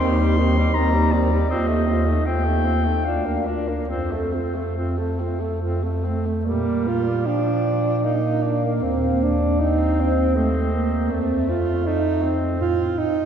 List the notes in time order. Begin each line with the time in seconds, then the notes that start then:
0.00 D#2 D#3 C4 C6
0.20 G3 D#4
0.37 D#3 C4
0.57 G3 D#4
0.74 D#2 D#3 C4 A#5
0.94 G3 D#4
1.12 D#3 C4 D5
1.31 G3 D#4
1.50 D#2 C4 F4 D#5
1.68 A3 D#4
1.86 C4 F4
2.06 A3 D#4
2.25 D#2 C4 F4 G5
2.45 A3 D#4
2.65 C4 F4
2.85 A3 D#4
3.05 D2 D4 F4 F5
3.25 A#3 D4
3.45 D4 F4 A#4
3.69 A#3 D4
3.88 F2 C4 F4 C5
4.12 A3 A4
4.33 C4 F4
4.54 A3 A4
4.76 F2 C4 F4
4.98 A3 A4
5.20 C4 F4
5.40 A3 A4
5.61 F2 C4 F4
5.83 A3 A4
6.05 A3 C4
6.26 A3
6.44 A#2 G3 A#3 D5
6.87 F4
7.26 F3 D4 G5
8.04 A#3 D#4 F5
8.42 D4
8.64 A#3
8.82 D#2 C4
9.23 D4
9.59 C4 D#4
10.00 C4
10.36 A3 C4 D#5
10.74 A#3
11.09 F2 A3 C4 D5
11.49 F4
11.84 A3 D#4 C5
12.23 C4
12.58 A2 F4 C5
12.98 D#4